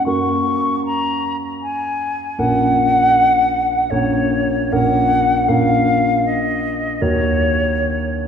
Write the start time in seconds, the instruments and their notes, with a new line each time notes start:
0.06 grand piano F#2 A#3 F#4 A#4, flute C#6
0.86 flute A#5
1.62 flute G#5
2.39 grand piano A#1 A#3 C#4 A#4, flute F#5
3.90 grand piano A#1 A#3 C#4 A#4, flute C#5
4.72 grand piano A#1 A#3 C#4 A#4, flute F#5
5.48 grand piano A#1 A#3 C#4 A#4, flute F5
6.26 flute D#5
7.01 grand piano D#2 A#3 F#4 A#4, flute C#5